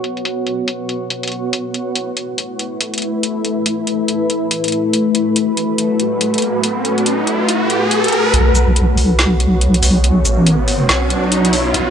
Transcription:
0.00 1.49 B3 medium
0.00 1.49 F#4 medium
0.00 1.49 C#5 medium
0.04 closed hi-hat soft
0.17 closed hi-hat soft
0.25 closed hi-hat medium
0.47 closed hi-hat soft
0.68 closed hi-hat medium
0.89 closed hi-hat soft
1.10 closed hi-hat medium
1.23 closed hi-hat soft
1.28 closed hi-hat medium
1.32 closed hi-hat soft
1.53 8.30 A3 medium
1.53 4.90 E4 medium
1.53 8.30 B4 medium
1.53 closed hi-hat medium
1.74 closed hi-hat soft
1.96 closed hi-hat medium
2.17 closed hi-hat soft
2.38 closed hi-hat medium
2.59 closed hi-hat soft
2.81 closed hi-hat medium
2.94 closed hi-hat soft
2.98 closed hi-hat medium
3.02 closed hi-hat soft
3.23 closed hi-hat medium
3.45 closed hi-hat soft
3.66 closed hi-hat medium
3.87 closed hi-hat soft
4.08 closed hi-hat medium
4.30 closed hi-hat soft
4.51 closed hi-hat medium
4.64 closed hi-hat soft
4.68 closed hi-hat medium
4.72 closed hi-hat soft
4.93 8.30 F#4 medium
4.93 closed hi-hat medium
4.93 riser medium
5.15 closed hi-hat soft
5.36 closed hi-hat medium
5.57 closed hi-hat soft
5.78 closed hi-hat medium
6.00 closed hi-hat soft
6.21 closed hi-hat medium
6.34 closed hi-hat soft
6.38 closed hi-hat medium
6.42 closed hi-hat soft
6.63 closed hi-hat medium
6.85 closed hi-hat soft
6.98 closed hi-hat soft
7.06 closed hi-hat medium
7.27 closed hi-hat medium
7.49 closed hi-hat medium
7.70 closed hi-hat soft
7.91 closed hi-hat medium
8.04 closed hi-hat soft
8.08 closed hi-hat medium
8.12 closed hi-hat soft
8.34 8.96 B1 medium
8.34 11.90 B3 medium
8.34 11.71 F#4 medium
8.34 11.90 C#5 medium
8.34 closed hi-hat medium
8.34 riser medium
8.55 closed hi-hat medium
8.55 shaker soft
8.76 closed hi-hat medium
8.97 9.81 B1 loud
8.97 open hi-hat medium
9.19 snare loud
9.19 closed hi-hat medium
9.40 closed hi-hat medium
9.61 closed hi-hat medium
9.74 closed hi-hat medium
9.83 10.24 B1 loud
9.83 open hi-hat medium
9.83 shaker medium
10.04 closed hi-hat medium
10.25 10.88 A1 medium
10.25 closed hi-hat medium
10.25 shaker soft
10.46 closed hi-hat medium
10.68 open hi-hat medium
10.89 11.73 B1 medium
10.89 snare loud
10.89 closed hi-hat medium
11.10 closed hi-hat medium
11.32 closed hi-hat medium
11.45 closed hi-hat medium
11.53 open hi-hat medium
11.74 11.90 B1 loud
11.74 closed hi-hat medium

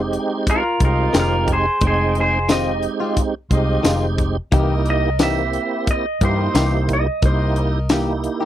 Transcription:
0.00 0.16 F1 loud
0.00 0.63 G#3 medium
0.00 0.63 C4 medium
0.00 0.64 D#4 medium
0.00 0.64 G4 medium
0.13 closed hi-hat medium
0.47 0.82 F4 medium
0.47 0.82 A#4 medium
0.47 kick medium
0.47 closed hi-hat medium
0.80 1.07 C2 medium
0.80 1.65 G#3 medium
0.80 1.66 C4 medium
0.80 1.66 D#4 medium
0.80 1.32 F4 medium
0.80 1.66 G4 medium
0.80 1.33 D#5 medium
0.80 kick medium
0.80 closed hi-hat medium
0.84 1.14 F4 medium
0.84 1.16 A#4 medium
1.13 1.66 F1 loud
1.13 1.35 D#3 medium
1.13 1.35 G#3 medium
1.13 1.35 C4 medium
1.13 1.35 F4 medium
1.13 snare loud
1.13 closed hi-hat medium
1.13 tambourine loud
1.19 1.49 F4 medium
1.19 1.50 A#4 medium
1.48 kick medium
1.48 closed hi-hat medium
1.52 1.82 G#4 medium
1.52 1.84 C5 medium
1.81 2.86 F1 loud
1.81 2.38 G#3 medium
1.81 2.39 C4 medium
1.81 2.39 D#4 medium
1.81 2.50 F4 medium
1.81 2.50 D#5 medium
1.81 2.39 G5 medium
1.81 kick loud
1.81 closed hi-hat medium
1.87 2.16 G#4 medium
1.87 2.17 C5 medium
2.15 closed hi-hat soft
2.20 2.50 G#4 medium
2.20 2.51 C5 medium
2.48 2.70 D#3 medium
2.48 3.34 G#3 medium
2.48 2.70 G#3 medium
2.48 3.34 C4 medium
2.48 2.71 C4 medium
2.48 3.34 D#4 medium
2.48 2.71 F4 medium
2.48 3.35 G4 medium
2.48 2.84 D#5 loud
2.48 snare medium
2.48 closed hi-hat medium
2.48 tambourine loud
2.83 closed hi-hat medium
3.00 3.22 G#3 medium
3.00 3.21 C4 soft
3.00 3.20 F4 medium
3.17 kick medium
3.17 closed hi-hat medium
3.50 3.77 C2 medium
3.50 4.36 G#3 medium
3.50 4.37 C4 medium
3.50 4.37 D#4 medium
3.50 4.02 F4 medium
3.50 4.37 G4 medium
3.50 4.03 D#5 medium
3.50 kick medium
3.50 closed hi-hat medium
3.83 4.37 F1 medium
3.83 4.05 D#3 medium
3.83 4.05 G#3 medium
3.83 4.06 C4 medium
3.83 4.06 F4 medium
3.83 snare loud
3.83 closed hi-hat medium
3.83 tambourine loud
4.18 kick medium
4.18 closed hi-hat medium
4.52 5.57 C2 loud
4.52 4.73 E3 medium
4.52 4.73 A#3 medium
4.52 5.10 A#3 medium
4.52 4.74 D#4 medium
4.52 5.10 D#4 medium
4.52 5.10 E4 medium
4.52 4.74 G4 medium
4.52 5.10 G4 medium
4.52 5.20 A#4 medium
4.52 5.21 D#5 medium
4.52 kick loud
4.52 closed hi-hat medium
4.86 closed hi-hat medium
4.90 5.21 D#5 medium
5.19 5.41 E3 medium
5.19 5.41 A#3 medium
5.19 6.06 A#3 medium
5.19 6.06 C4 medium
5.19 5.41 D#4 medium
5.19 6.06 E4 medium
5.19 5.41 G4 medium
5.19 6.06 G4 medium
5.19 5.87 E5 medium
5.19 snare medium
5.19 closed hi-hat medium
5.19 tambourine loud
5.53 closed hi-hat medium
5.87 6.22 D#5 loud
5.87 kick medium
5.87 closed hi-hat medium
6.21 6.47 G2 medium
6.21 6.42 E3 soft
6.21 7.06 A#3 medium
6.21 6.43 A#3 medium
6.21 7.07 D#4 medium
6.21 6.43 D#4 medium
6.21 7.07 E4 medium
6.21 7.07 G4 medium
6.21 6.43 G4 medium
6.21 6.73 A#4 medium
6.21 6.89 C5 medium
6.21 6.73 D#5 medium
6.21 kick medium
6.21 closed hi-hat medium
6.54 7.07 C2 loud
6.54 6.76 E3 medium
6.54 6.76 A#3 medium
6.54 6.76 D#4 medium
6.54 6.76 G4 medium
6.54 snare loud
6.54 closed hi-hat medium
6.54 tambourine loud
6.89 kick medium
6.89 closed hi-hat medium
6.93 7.24 D#5 medium
7.22 8.27 C2 loud
7.22 7.79 A#3 medium
7.22 7.79 D#4 medium
7.22 7.80 E4 medium
7.22 7.80 G4 medium
7.22 7.91 A#4 medium
7.22 7.57 C5 loud
7.22 7.91 D#5 medium
7.22 kick loud
7.22 closed hi-hat medium
7.56 closed hi-hat medium
7.89 8.11 E3 medium
7.89 8.45 A#3 medium
7.89 8.11 A#3 loud
7.89 8.45 D#4 medium
7.89 8.11 D#4 medium
7.89 8.45 E4 medium
7.89 8.45 G4 medium
7.89 8.12 G4 loud
7.89 snare loud
7.89 closed hi-hat medium
7.89 tambourine loud
8.24 closed hi-hat medium
8.40 8.45 D#4 medium
8.40 8.45 G4 medium

